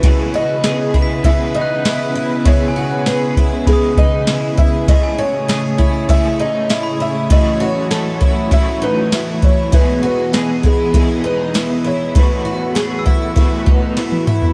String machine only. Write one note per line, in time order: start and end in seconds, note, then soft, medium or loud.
0.00 7.26 C#3 medium
0.00 4.84 B3 medium
0.00 7.27 G#4 medium
0.00 4.84 B4 medium
4.88 9.69 A3 medium
4.88 9.69 C#5 medium
7.30 14.53 E3 medium
7.30 9.71 F#4 medium
9.73 12.13 B3 medium
9.73 12.13 G#4 medium
9.73 12.13 D#5 medium
12.16 14.53 A3 medium
12.16 14.53 F#4 medium
12.16 14.53 B4 medium